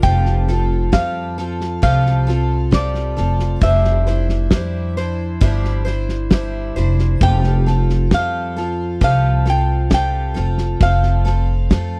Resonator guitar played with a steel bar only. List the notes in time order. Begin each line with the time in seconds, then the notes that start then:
0.03 G5
0.93 F5
1.83 F5
2.74 D5
3.63 E5
7.23 G5
8.14 F5
9.04 F5
9.50 G5
9.94 G5
10.83 F5